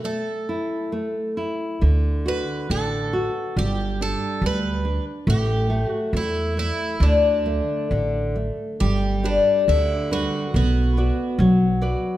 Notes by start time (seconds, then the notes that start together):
0.04 A3 A4
0.49 E4
0.92 A3
1.37 E4
1.81 D2 D3
2.26 F#4 B4
2.70 A1 D3 A4
3.13 F#4
3.57 G1 G3 G4
4.01 D4 A4
4.42 D2 G3
4.46 B4
4.85 D4
5.27 A1 A3 G4
5.70 A3
5.89 F#4
6.13 E2 A3 E4
6.57 A3 E4
7.00 D2 D3 D4
7.46 A3
7.91 A1 D3
8.36 A3
8.80 G1 G3 G4
9.23 D4 G4 B4
9.68 D2 D3 E4
10.11 G3 D4 F#4 B4
10.54 B1 B3 F#4
10.97 F#4 B4 D5
11.39 B1 F#3
11.82 F#4 B4 D5